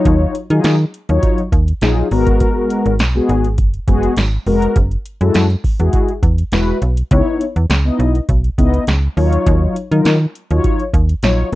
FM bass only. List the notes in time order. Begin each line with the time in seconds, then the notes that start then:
0.05 D#2
0.50 D#3
0.64 D#3
1.09 D#2
1.52 D#2
1.82 A#1
2.11 G#1
2.86 G#1
3.00 B1
3.29 G#1
3.58 F#1
3.88 F#1
4.17 G#1
4.47 F1
4.76 F#1
5.21 F#2
5.35 F#2
5.80 E2
6.23 E2
6.52 E1
6.82 B1
7.11 C#2
7.56 E2
7.70 C#2
7.99 B1
8.29 B1
8.58 C#2
8.88 C#2
9.17 D#2
9.47 D#2
9.92 D#3
10.05 D#3
10.51 D#2
10.94 D#2
11.23 A#1